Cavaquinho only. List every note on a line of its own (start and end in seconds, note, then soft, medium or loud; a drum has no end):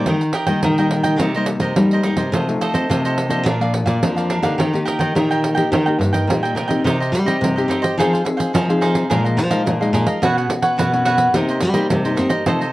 0.07 0.20 G4 soft
0.07 0.20 A#4 soft
0.07 0.20 D#5 medium
0.07 0.20 G5 medium
0.21 muted cavaquinho stroke soft
0.34 0.47 G4 medium
0.34 0.47 A#4 medium
0.34 0.47 D#5 medium
0.34 0.45 G5 medium
0.46 0.62 A#4 soft
0.46 0.61 D#5 medium
0.46 0.61 G5 medium
0.63 0.76 G4 soft
0.63 0.77 A#4 soft
0.63 0.77 D#5 medium
0.63 0.77 G5 medium
0.78 1.04 A#4 medium
0.78 1.03 D#5 medium
0.78 1.02 G5 medium
1.03 1.18 A#4 soft
1.03 1.18 D#5 medium
1.03 1.17 G5 medium
1.22 1.34 D#4 medium
1.22 1.34 A#4 soft
1.22 1.34 C5 soft
1.22 1.34 D#5 soft
1.36 1.47 A#4 medium
1.36 1.47 C5 medium
1.36 1.47 D#5 medium
1.48 muted cavaquinho stroke soft
1.61 1.90 A#4 soft
1.61 1.90 C5 medium
1.61 1.89 D#5 medium
1.93 2.04 A#4 soft
1.93 2.04 C5 medium
1.93 2.05 D#5 medium
2.04 2.17 D#4 medium
2.04 2.17 A#4 medium
2.04 2.17 C5 medium
2.04 2.16 D#5 medium
2.17 2.32 A#4 medium
2.17 2.31 C5 medium
2.17 2.31 D#5 medium
2.34 2.46 F4 soft
2.34 2.47 A4 soft
2.34 2.47 C5 medium
2.34 2.47 D#5 soft
2.49 muted cavaquinho stroke soft
2.61 2.74 F4 medium
2.61 2.74 A4 medium
2.61 2.73 C5 medium
2.61 2.73 D#5 medium
2.74 2.88 A4 medium
2.74 2.88 C5 medium
2.74 2.88 D#5 medium
2.90 3.02 F4 medium
2.90 3.03 A4 soft
2.90 3.03 C5 medium
2.90 3.03 D#5 medium
3.05 3.31 A4 medium
3.05 3.30 C5 medium
3.05 3.29 D#5 medium
3.30 3.45 A4 medium
3.30 3.44 C5 medium
3.30 3.44 D#5 medium
3.47 3.59 D4 soft
3.47 3.60 A#4 soft
3.47 3.60 D5 medium
3.47 3.60 F5 soft
3.62 3.73 A#4 soft
3.62 3.73 D5 medium
3.62 3.74 F5 medium
3.74 muted cavaquinho stroke soft
3.86 4.15 A#4 medium
3.86 4.15 D5 medium
3.86 4.14 F5 medium
4.16 4.29 A#4 soft
4.16 4.30 D5 medium
4.16 4.30 F5 medium
4.30 4.43 D4 medium
4.30 4.44 A#4 medium
4.30 4.43 D5 medium
4.30 4.42 F5 medium
4.44 4.58 A#4 medium
4.44 4.58 D5 medium
4.44 4.57 F5 medium
4.58 4.72 G4 soft
4.58 4.72 A#4 soft
4.58 4.72 D#5 medium
4.58 4.72 G5 soft
4.73 muted cavaquinho stroke soft
4.85 4.99 G4 medium
4.85 5.00 A#4 medium
4.85 5.00 D#5 medium
4.85 4.99 G5 medium
5.00 5.14 A#4 medium
5.00 5.14 D#5 medium
5.00 5.14 G5 medium
5.16 5.29 G4 soft
5.16 5.29 A#4 medium
5.16 5.29 D#5 soft
5.16 5.29 G5 medium
5.31 5.55 A#4 soft
5.31 5.55 D#5 medium
5.31 5.54 G5 medium
5.55 5.70 A#4 medium
5.55 5.70 D#5 medium
5.55 5.69 G5 medium
5.72 5.85 G4 soft
5.72 5.85 A#4 soft
5.72 5.86 D#5 soft
5.72 5.85 G5 soft
5.86 5.98 A#4 medium
5.86 5.98 D#5 medium
5.86 5.98 G5 medium
5.99 muted cavaquinho stroke soft
6.12 6.41 A#4 medium
6.12 6.41 D#5 medium
6.12 6.40 G5 medium
6.43 6.55 A#4 soft
6.43 6.55 D#5 medium
6.43 6.55 G5 medium
6.55 6.69 G4 medium
6.55 6.69 A#4 medium
6.55 6.67 D#5 medium
6.55 6.66 G5 medium
6.67 6.83 A#4 soft
6.67 6.82 D#5 medium
6.67 6.82 G5 medium
6.85 6.98 D#4 medium
6.85 6.98 G4 medium
6.85 6.98 C5 medium
6.85 6.98 D#5 medium
7.00 7.12 G4 soft
7.00 7.12 C5 soft
7.00 7.12 D#5 medium
7.13 muted cavaquinho stroke soft
7.26 7.54 G4 medium
7.26 7.54 C5 medium
7.26 7.54 D#5 medium
7.56 7.69 G4 soft
7.56 7.69 C5 soft
7.56 7.68 D#5 soft
7.69 7.82 D#4 soft
7.69 7.83 G4 medium
7.69 7.81 C5 medium
7.69 7.81 D#5 soft
7.82 7.96 G4 medium
7.82 7.96 C5 medium
7.82 7.96 D#5 medium
7.99 8.11 D#4 medium
7.99 8.11 G#4 medium
7.99 8.11 C5 medium
7.99 8.11 F5 medium
8.13 8.23 G#4 soft
8.13 8.24 C5 soft
8.13 8.24 F5 soft
8.25 muted cavaquinho stroke soft
8.37 8.52 G#4 medium
8.37 8.52 C5 medium
8.37 8.51 F5 medium
8.54 8.67 D#4 medium
8.54 8.67 G#4 medium
8.54 8.67 C5 medium
8.54 8.67 F5 medium
8.70 8.80 G#4 soft
8.70 8.81 C5 soft
8.70 8.82 F5 soft
8.81 9.09 D#4 medium
8.81 9.08 G#4 medium
8.81 9.09 C5 medium
8.81 9.09 F5 medium
9.10 9.23 G#4 medium
9.10 9.23 A#4 medium
9.10 9.23 D#5 medium
9.10 9.23 F5 medium
9.24 9.36 A#4 soft
9.24 9.37 D#5 soft
9.24 9.37 F5 soft
9.37 muted cavaquinho stroke soft
9.51 9.79 A#4 medium
9.51 9.78 D#5 medium
9.51 9.78 F5 medium
9.81 9.93 A#4 soft
9.81 9.93 D#5 soft
9.81 9.93 F5 medium
9.94 10.07 G#4 soft
9.94 10.07 A#4 soft
9.94 10.06 D#5 medium
9.94 10.06 F5 medium
10.07 10.21 A#4 medium
10.07 10.21 D#5 medium
10.07 10.20 F5 medium
10.23 10.36 F#4 medium
10.23 10.36 B4 medium
10.23 10.36 C#5 medium
10.23 10.36 F#5 medium
10.37 10.49 B4 soft
10.37 10.49 C#5 soft
10.37 10.49 F#5 medium
10.50 muted cavaquinho stroke soft
10.62 10.77 B4 medium
10.62 10.77 C#5 medium
10.62 10.76 F#5 medium
10.78 10.91 F#4 medium
10.78 10.91 B4 medium
10.78 10.92 C#5 medium
10.78 10.92 F#5 medium
10.93 11.04 B4 soft
10.93 11.05 C#5 soft
10.93 11.05 F#5 soft
11.05 11.33 F#4 medium
11.05 11.33 B4 medium
11.05 11.33 C#5 medium
11.05 11.33 F#5 medium
11.34 11.47 D#4 medium
11.34 11.48 A#4 medium
11.34 11.48 C5 medium
11.34 11.48 D#5 medium
11.50 11.60 A#4 soft
11.50 11.61 C5 medium
11.50 11.61 D#5 medium
11.61 muted cavaquinho stroke soft
11.74 12.03 A#4 medium
11.74 12.03 C5 medium
11.74 12.02 D#5 medium
12.05 12.16 A#4 soft
12.05 12.16 C5 soft
12.05 12.16 D#5 soft
12.16 12.30 D#4 medium
12.16 12.30 A#4 medium
12.16 12.29 C5 soft
12.16 12.28 D#5 medium
12.29 12.45 A#4 medium
12.29 12.44 C5 medium
12.29 12.44 D#5 medium
12.46 12.60 F4 medium
12.46 12.60 A4 medium
12.46 12.60 C5 medium
12.46 12.60 D#5 medium
12.61 12.72 A4 soft
12.61 12.72 C5 soft
12.61 12.72 D#5 medium